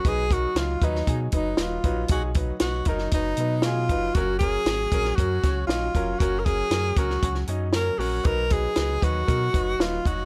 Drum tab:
HH |x-x-x-x-x-x-x-x-|x-x-x-x-x-x-x-x-|x-x-x-x-x-x-x-x-|x-x-x-x-x-x-x-o-|
SD |----o--o----o---|----o--o----o---|----o--o--o-o---|----o--o-o--o---|
BD |o-o---o-o-o---o-|o-o---o-o-----o-|o-o---o-o-o---o-|o-o---o-o-------|

HH |x-x-x-x-x-x-x-x-|
SD |----o-------o---|
BD |o-o---o-o-o---o-|